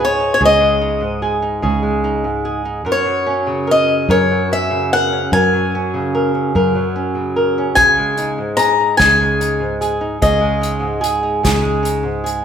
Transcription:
Already playing: fingered electric bass C#2, nylon-string guitar G#2 G#3 D#4
0.00 nylon-string guitar G#4
0.05 steel-string acoustic guitar C#5
0.20 nylon-string guitar D#4
0.34 steel-string acoustic guitar C#5
0.40 fingered electric bass C#2, nylon-string guitar C#3 G#4
0.45 steel-string acoustic guitar D#5
0.60 nylon-string guitar G#3
0.81 nylon-string guitar D#4
1.01 nylon-string guitar G#2
1.22 nylon-string guitar G#4
1.42 nylon-string guitar D#4
1.62 fingered electric bass C#2, nylon-string guitar C#3 G#4
1.83 nylon-string guitar G#3
2.04 nylon-string guitar D#4
2.24 nylon-string guitar G#2
2.45 nylon-string guitar G#4
2.65 nylon-string guitar D#4
2.85 nylon-string guitar F#2 A#4, fingered electric bass F#2
2.92 steel-string acoustic guitar C#5
3.06 nylon-string guitar F#3
3.27 nylon-string guitar C#4
3.47 nylon-string guitar C#3
3.67 nylon-string guitar A#4
3.71 steel-string acoustic guitar D#5
3.88 nylon-string guitar C#4
4.09 fingered electric bass F#2, nylon-string guitar F#2 A#4, steel-string acoustic guitar C#5
4.31 nylon-string guitar F#3
4.52 nylon-string guitar C#4, steel-string acoustic guitar E5
4.70 nylon-string guitar C#3
4.93 nylon-string guitar A#4, steel-string acoustic guitar F#5
5.13 nylon-string guitar C#4
5.32 fingered electric bass F#2, nylon-string guitar F#2 A#4, steel-string acoustic guitar G#5
5.53 nylon-string guitar F#3
5.75 nylon-string guitar C#4
5.94 nylon-string guitar C#3
6.15 nylon-string guitar A#4
6.34 nylon-string guitar C#4
6.55 nylon-string guitar F#2 A#4, fingered electric bass F#2
6.75 nylon-string guitar F#3
6.96 nylon-string guitar C#4
7.15 nylon-string guitar C#3
7.36 nylon-string guitar A#4
7.58 nylon-string guitar C#4
7.75 fingered electric bass C#2, nylon-string guitar C#3 G#4, steel-string acoustic guitar G#5, kick, closed hi-hat
7.98 nylon-string guitar G#3
8.17 nylon-string guitar D#4, closed hi-hat
8.38 nylon-string guitar G#2
8.57 nylon-string guitar G#4, steel-string acoustic guitar A#5, closed hi-hat
8.80 nylon-string guitar D#4
8.97 fingered electric bass C#2, nylon-string guitar C#3 G#4, steel-string acoustic guitar G#5, kick, snare, closed hi-hat
9.20 nylon-string guitar G#3
9.40 nylon-string guitar D#4, closed hi-hat
9.60 nylon-string guitar G#2
9.81 nylon-string guitar G#4, closed hi-hat
10.01 nylon-string guitar D#4
10.22 fingered electric bass C#2, nylon-string guitar C#3 G#4, steel-string acoustic guitar D#5, kick, closed hi-hat
10.41 nylon-string guitar G#3
10.61 nylon-string guitar D#4, closed hi-hat
10.80 nylon-string guitar G#2
11.01 nylon-string guitar G#4, closed hi-hat
11.23 nylon-string guitar D#4
11.43 fingered electric bass C#2, nylon-string guitar C#3 G#4, kick, snare, closed hi-hat
11.62 nylon-string guitar G#3
11.83 nylon-string guitar D#4, closed hi-hat
12.03 nylon-string guitar G#2
12.24 nylon-string guitar G#4, closed hi-hat

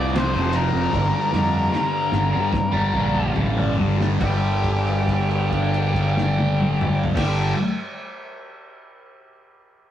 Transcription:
Already playing: fingered electric bass C2, distorted electric guitar F2 C3 F3, lead electric guitar D5
0.14 distorted electric guitar F2 C3 F3, lead electric guitar C5, snare, ride
0.34 fingered electric bass F1, distorted electric guitar C3 F3, snare
0.53 distorted electric guitar F2 C3 F3, lead electric guitar A#4, ride
0.72 fingered electric bass F1, distorted electric guitar C3 F3
0.92 fingered electric bass G1, distorted electric guitar G2 D3 G3, kick, snare
1.10 distorted electric guitar D3 G3
1.30 fingered electric bass F2, distorted electric guitar G2 D3, snare
1.34 distorted electric guitar G3
1.70 distorted electric guitar G2 D3 G3, snare
2.12 fingered electric bass G1, snare
2.31 fingered electric bass G2, distorted electric guitar D3 G3
2.52 muted distorted electric guitar stroke, kick, snare
2.71 fingered electric bass G1, distorted electric guitar G3, mid tom
2.76 distorted electric guitar D3
2.94 fingered electric bass A#1, distorted electric guitar G2 D3, kick
2.98 distorted electric guitar G3
3.15 mid tom
3.36 fingered electric bass A1, distorted electric guitar G2 D3 G3, floor tom
3.57 distorted electric guitar D3 G3, floor tom
3.78 fingered electric bass G1, distorted electric guitar G2 D3 G3, floor tom
3.98 distorted electric guitar D3 G3, snare
4.20 fingered electric bass G1, distorted electric guitar G2 D3 G3, lead electric guitar G4, kick, crash
4.64 kick, crash
4.87 crash
5.08 kick, crash
5.31 crash
5.51 kick, crash
5.74 crash
5.95 kick, crash
6.17 snare
6.39 high tom
6.60 mid tom
6.81 mid tom
7.04 floor tom
7.14 fingered electric bass G1, distorted electric guitar G2 D3 G3, lead electric guitar G4, kick, snare, crash

